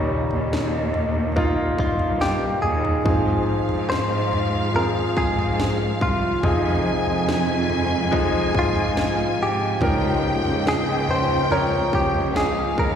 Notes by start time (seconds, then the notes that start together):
Already playing: D#2 A#2 C#3 D#3 G3 A#3 D#4 C#5
0.31 D#2, floor tom
0.53 snare
0.94 floor tom
1.36 A#3 D#4 F4, kick, floor tom
1.78 G2 F4, kick
1.99 floor tom
2.21 G4, snare
2.62 D#2 G#4, floor tom
2.85 floor tom
3.04 G#2 D#3 F3 G#3 C4 F4 G#4 F5, kick, floor tom
3.69 G#2, floor tom
3.90 C5, snare
4.33 floor tom
4.74 F3 C4 G#4 A#4, floor tom
5.17 G#2 G#4, kick
5.39 floor tom
5.60 snare
6.01 C2 F4, kick
6.43 F2 C3 F3 G#3 D#4 F4 G#4 G#5, kick, floor tom
7.06 F2, floor tom
7.29 snare
7.70 floor tom
8.11 F3 G#3 D#4, kick, floor tom
8.54 G#2, kick
8.59 F4
8.75 floor tom
8.97 snare
9.39 G#2 G4
9.80 C#2 G#2 C#3 F3 G#3 A#3 C#4 A#4 G5, kick, floor tom
10.45 C#2, floor tom
10.67 G#4, snare
11.09 C5, floor tom
11.50 F3 C#4 A#4 C#5, floor tom
11.93 C#2 G4, kick
12.14 floor tom
12.36 G#4 F5, snare
12.78 D#2 A#4, kick